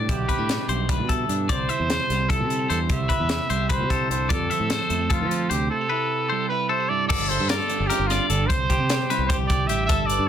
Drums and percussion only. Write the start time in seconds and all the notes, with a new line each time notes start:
0.09 kick, closed hi-hat
0.29 kick, closed hi-hat
0.49 snare, closed hi-hat
0.69 closed hi-hat
0.89 kick, closed hi-hat
1.09 kick, closed hi-hat
1.29 closed hi-hat
1.49 kick, closed hi-hat
1.69 closed hi-hat
1.90 snare, closed hi-hat
2.10 snare, closed hi-hat
2.30 kick, closed hi-hat
2.50 closed hi-hat
2.70 closed hi-hat
2.89 kick, closed hi-hat
3.10 kick, closed hi-hat
3.29 snare, closed hi-hat
3.50 closed hi-hat
3.70 kick, closed hi-hat
3.90 kick, closed hi-hat
4.11 closed hi-hat
4.30 kick, closed hi-hat
4.51 closed hi-hat
4.70 snare, closed hi-hat
4.90 closed hi-hat
5.10 kick, closed hi-hat
5.31 closed hi-hat
5.51 closed hi-hat
7.10 kick, crash
7.30 closed hi-hat
7.49 snare, closed hi-hat
7.70 closed hi-hat
7.90 snare, closed hi-hat
8.10 snare, closed hi-hat
8.30 closed hi-hat
8.50 kick, closed hi-hat
8.70 kick, closed hi-hat
8.90 snare, closed hi-hat
9.10 snare, closed hi-hat
9.30 kick, closed hi-hat
9.50 kick, closed hi-hat
9.69 closed hi-hat
9.89 kick, closed hi-hat
10.10 closed hi-hat